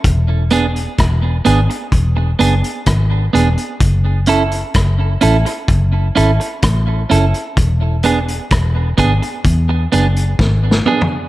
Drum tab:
HH |x-----x--x--x-----x--x--x-----x--x--x-----x--x--|x-----x--x--x-----x--x--x-----x--x--x-----x--x--|x-----x--x--x-----x--x--x-----x--x--------------|
SD |------------r-----------------------r-----------|------------r-----------------------r-----------|------------r-----------------------o---o-------|
T2 |------------------------------------------------|------------------------------------------------|------------------------------------------o-----|
FT |------------------------------------------------|------------------------------------------------|--------------------------------------------o---|
BD |o-----------o-----------o-----------o-----------|o-----------o-----------o-----------o-----------|o-----------o-----o-----o-----------o-----------|